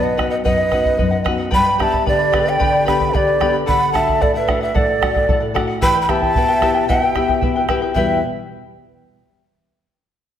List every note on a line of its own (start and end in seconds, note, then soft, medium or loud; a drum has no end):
0.00 0.43 F#2 medium
0.00 0.29 B4 medium
0.00 0.30 D#5 medium
0.00 0.17 F#5 soft
0.05 0.17 D#5 soft
0.17 0.61 B3 soft
0.17 0.61 D#4 soft
0.17 0.61 F#4 soft
0.17 0.31 B4 medium
0.17 0.30 D#5 medium
0.17 0.29 F#5 medium
0.17 bombo rim medium
0.17 bombo low medium
0.29 0.35 B4 medium
0.29 0.36 D#5 medium
0.29 0.44 D#5 soft
0.29 0.44 F#5 soft
0.43 0.98 F#2 medium
0.43 1.21 B4 medium
0.43 0.58 B4 medium
0.43 1.21 D#5 medium
0.43 0.57 D#5 medium
0.43 0.56 F#5 medium
0.43 bombo low medium
0.58 0.70 D#5 soft
0.58 0.71 F#5 medium
0.71 1.16 B3 soft
0.71 1.16 D#4 soft
0.71 1.16 F#4 soft
0.71 0.85 B4 medium
0.71 0.84 D#5 medium
0.71 0.83 F#5 medium
0.71 bombo rim soft
0.71 bombo low soft
0.85 0.97 D#5 soft
0.85 0.98 F#5 medium
0.85 bombo low medium
0.98 1.52 F#2 medium
0.98 1.12 B4 medium
0.98 1.10 D#5 medium
0.98 1.10 F#5 medium
0.98 bombo low medium
1.11 1.23 D#5 medium
1.11 1.24 F#5 medium
1.24 1.48 B3 soft
1.24 1.48 D#4 soft
1.24 1.49 F#4 medium
1.24 1.38 B4 medium
1.24 1.38 D#5 medium
1.24 1.37 F#5 loud
1.24 bombo rim soft
1.24 bombo low soft
1.38 1.51 D#5 soft
1.38 1.51 F#5 medium
1.51 2.06 G2 medium
1.51 1.65 G4 medium
1.51 1.65 B4 medium
1.51 1.64 D5 medium
1.51 1.65 G5 medium
1.51 1.63 B5 medium
1.51 1.84 B5 loud
1.51 bombo low medium
1.55 1.82 G5 medium
1.64 1.78 B4 soft
1.64 1.78 D5 soft
1.64 1.78 B5 medium
1.78 2.23 B3 soft
1.78 2.23 D4 soft
1.78 1.92 G4 medium
1.78 2.23 G4 medium
1.78 1.92 B4 medium
1.78 1.91 D5 medium
1.78 2.07 E5 medium
1.78 1.93 G5 medium
1.78 2.08 A5 medium
1.78 1.91 B5 medium
1.78 bombo rim soft
1.78 bombo low soft
1.92 2.05 B4 soft
1.92 2.05 D5 soft
1.92 2.06 B5 soft
1.92 bombo low medium
2.06 2.59 D3 medium
2.06 2.51 G4 medium
2.06 2.19 B4 medium
2.06 2.18 D5 medium
2.06 2.51 D5 medium
2.06 2.20 G5 medium
2.06 2.18 B5 medium
2.06 bombo low medium
2.19 2.32 B4 soft
2.19 2.32 D5 soft
2.19 2.32 B5 medium
2.32 2.76 B3 soft
2.32 2.76 D4 soft
2.32 2.46 G4 medium
2.32 2.77 G4 soft
2.32 2.46 B4 medium
2.32 2.45 D5 medium
2.32 2.46 G5 medium
2.32 2.44 B5 medium
2.32 bombo rim medium
2.32 bombo low medium
2.46 2.58 B4 soft
2.46 2.59 D5 soft
2.46 2.87 D5 medium
2.46 2.88 G5 loud
2.46 2.59 B5 medium
2.59 3.12 D3 medium
2.59 2.73 G4 medium
2.59 2.72 B4 medium
2.59 2.72 D5 medium
2.59 2.73 G5 medium
2.59 2.71 B5 medium
2.59 bombo low medium
2.72 2.85 B4 soft
2.72 2.85 D5 soft
2.72 2.85 B5 medium
2.85 3.30 B3 soft
2.85 3.30 D4 soft
2.85 2.99 G4 medium
2.85 3.31 G4 medium
2.85 2.99 B4 medium
2.85 2.98 D5 medium
2.85 3.00 G5 medium
2.85 3.16 G5 medium
2.85 2.98 B5 medium
2.85 3.17 B5 medium
2.85 bombo rim soft
2.85 bombo low soft
2.99 3.12 B4 soft
2.99 3.12 D5 soft
2.99 3.13 B5 soft
2.99 bombo low soft
3.13 3.66 D3 medium
3.13 3.54 G4 medium
3.13 3.27 B4 medium
3.13 3.27 D5 medium
3.13 3.55 D5 medium
3.13 3.27 G5 medium
3.13 3.26 B5 medium
3.13 bombo low medium
3.27 3.40 B4 soft
3.27 3.40 D5 soft
3.27 3.40 B5 soft
3.40 3.63 B3 soft
3.40 3.63 D4 soft
3.40 3.54 G4 medium
3.40 3.63 G4 soft
3.40 3.53 B4 medium
3.40 3.52 D5 medium
3.40 3.54 G5 medium
3.40 3.52 B5 medium
3.40 bombo rim soft
3.40 bombo low soft
3.53 3.66 B4 soft
3.53 3.66 D5 soft
3.53 3.67 B5 medium
3.66 4.20 D3 medium
3.66 3.80 A4 medium
3.66 3.80 D5 medium
3.66 3.79 F#5 medium
3.66 3.92 F#5 medium
3.66 3.93 B5 medium
3.66 bombo low medium
3.80 3.92 D5 soft
3.80 3.92 F#5 soft
3.93 4.38 A3 soft
3.93 4.38 D4 soft
3.93 4.38 F#4 soft
3.93 4.07 A4 medium
3.93 4.07 D5 medium
3.93 4.23 E5 medium
3.93 4.05 F#5 medium
3.93 4.23 A5 medium
3.93 bombo rim soft
3.93 bombo low soft
4.07 4.19 D5 soft
4.07 4.20 F#5 soft
4.07 bombo low medium
4.20 4.74 A2 medium
4.20 4.34 A4 medium
4.20 4.35 A4 medium
4.20 4.34 D5 medium
4.20 4.35 D5 medium
4.20 4.33 F#5 medium
4.20 bombo low medium
4.34 4.61 B4 medium
4.34 4.46 D5 soft
4.34 4.60 E5 medium
4.34 4.47 F#5 medium
4.47 4.91 A3 soft
4.47 4.91 D4 soft
4.47 4.91 F#4 soft
4.47 4.61 A4 medium
4.47 4.61 D5 medium
4.47 4.60 F#5 medium
4.47 bombo rim medium
4.47 bombo low medium
4.61 4.80 B4 medium
4.61 4.73 D5 soft
4.61 4.77 E5 medium
4.61 4.74 F#5 medium
4.74 5.27 A2 medium
4.74 4.88 A4 medium
4.74 5.57 A4 medium
4.74 4.87 D5 medium
4.74 5.56 D5 medium
4.74 4.86 F#5 medium
4.74 bombo low medium
4.87 5.01 D5 soft
4.87 5.01 F#5 soft
5.01 5.45 A3 soft
5.01 5.45 D4 soft
5.01 5.45 F#4 soft
5.01 5.15 A4 medium
5.01 5.15 D5 medium
5.01 5.13 F#5 medium
5.01 bombo rim medium
5.01 bombo low medium
5.14 5.28 D5 soft
5.14 5.28 F#5 soft
5.14 bombo low medium
5.29 5.80 A2 medium
5.29 5.42 A4 medium
5.29 5.41 D5 medium
5.29 5.39 F#5 medium
5.29 bombo low medium
5.40 5.54 D5 soft
5.40 5.54 F#5 medium
5.54 5.77 A3 soft
5.54 5.77 D4 soft
5.54 5.77 F#4 medium
5.54 5.68 A4 medium
5.54 5.68 D5 medium
5.54 5.66 F#5 medium
5.54 bombo rim medium
5.54 bombo low medium
5.68 5.81 D5 soft
5.68 5.81 F#5 medium
5.81 6.34 E3 medium
5.81 5.95 E4 medium
5.81 5.95 G4 medium
5.81 5.95 B4 medium
5.81 5.94 E5 medium
5.81 5.94 G5 medium
5.81 6.01 B5 loud
5.81 bombo low medium
5.85 6.02 G5 medium
5.95 6.08 E4 soft
5.95 6.08 B4 soft
5.95 6.08 G5 medium
6.02 6.12 G5 medium
6.02 6.11 B5 medium
6.08 6.51 B3 soft
6.08 6.52 E4 soft
6.08 6.22 E4 medium
6.08 6.22 G4 medium
6.08 6.52 G4 soft
6.08 6.21 B4 medium
6.08 6.22 E5 medium
6.08 6.88 E5 medium
6.08 6.20 G5 medium
6.08 6.88 A5 loud
6.08 bombo rim soft
6.08 bombo low soft
6.22 6.35 E4 soft
6.22 6.36 B4 soft
6.22 6.35 G5 soft
6.22 bombo low medium
6.36 6.88 B2 medium
6.36 6.48 E4 medium
6.36 6.48 B4 medium
6.36 6.49 E5 medium
6.36 6.47 G5 medium
6.36 bombo low medium
6.48 6.61 E4 soft
6.48 6.62 B4 soft
6.48 6.61 G5 medium
6.61 7.05 B3 soft
6.61 7.05 E4 soft
6.61 6.75 E4 medium
6.61 6.76 G4 medium
6.61 7.05 G4 medium
6.61 6.74 B4 medium
6.61 6.76 E5 medium
6.61 6.73 G5 medium
6.61 bombo rim medium
6.61 bombo low medium
6.74 6.88 E4 soft
6.74 6.88 B4 soft
6.74 6.88 G5 medium
6.88 7.41 B2 medium
6.88 7.02 E4 medium
6.88 7.02 G4 medium
6.88 7.01 B4 medium
6.88 7.00 D#5 medium
6.88 7.02 E5 medium
6.88 7.04 F#5 medium
6.88 7.00 G5 medium
6.88 bombo low medium
7.00 7.14 E4 soft
7.00 7.14 B4 soft
7.00 7.65 E5 medium
7.00 7.14 G5 soft
7.04 7.65 G5 medium
7.15 7.59 B3 soft
7.15 7.28 E4 medium
7.15 7.59 E4 soft
7.15 7.29 G4 medium
7.15 7.59 G4 soft
7.15 7.27 B4 medium
7.15 7.29 E5 medium
7.15 7.26 G5 medium
7.15 bombo rim soft
7.15 bombo low soft
7.28 7.41 E4 soft
7.28 7.41 B4 soft
7.28 7.42 G5 soft
7.28 bombo low medium
7.41 7.95 B2 medium
7.41 7.56 E4 medium
7.41 7.55 B4 medium
7.41 7.55 E5 medium
7.41 7.55 G5 medium
7.41 bombo low medium
7.56 7.68 E4 soft
7.56 7.68 B4 medium
7.56 7.68 G5 medium
7.68 7.91 B3 soft
7.68 7.82 E4 medium
7.68 7.91 E4 soft
7.68 7.82 G4 medium
7.68 7.92 G4 soft
7.68 7.81 B4 medium
7.68 7.82 E5 medium
7.68 7.81 G5 medium
7.68 bombo rim medium
7.68 bombo low soft
7.82 7.95 E4 soft
7.82 7.95 B4 soft
7.82 7.96 G5 medium
7.94 8.21 E2 medium
7.94 8.21 B2 soft
7.94 8.21 G3 soft
7.94 8.21 B3 medium
7.94 8.18 E4 medium
7.94 8.22 E4 soft
7.94 8.17 G4 medium
7.94 8.18 B4 medium
7.94 8.21 B4 medium
7.94 8.22 B4 medium
7.94 8.20 E5 medium
7.94 8.17 E5 medium
7.94 8.18 G5 medium
7.94 bombo low medium